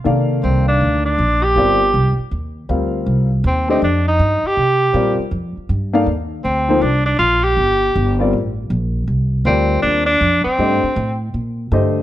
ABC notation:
X:1
M:4/4
L:1/8
Q:"Swing" 1/4=160
K:Cdor
V:1 name="Grand piano"
[E,B,Adf]4- [E,B,Adf] z3 | [G,CFBd] z4 z [G,CFBf]2- | [G,CFBf] z2 [A,DGce] z4 | z2 [G,CFBd] z4 [B,EAdf] |
z3 [F,B,EAc] z4 | z3 [G,CFBd] z4 | z2 [G,CFBd]3 z3 | [A,DGce] z4 z [D,A,Gce]2 |]
V:2 name="Tenor saxophone"
z2 C D2 D2 G- | G3 z4 z | z2 C C D E2 G- | G3 z4 z |
z2 C2 D D F G- | G3 z4 z | z2 C2 D D2 C- | C3 z4 z |]
V:3 name="Upright bass" clef=bass
C,2 C,,2 D,,2 B,,,2 | G,,,2 C,, z E,,2 D,,2 | C,,2 E,,2 F,,2 G,, z | C,2 B,, z F,, z G,,2 |
E,,2 D,,2 C,,2 B,,,2 | G,,,2 G,,,2 A,,,2 B,,,2 | C,,2 D,,2 E,,2 F,, z | G,, z A,,2 B,,2 G,,2 |]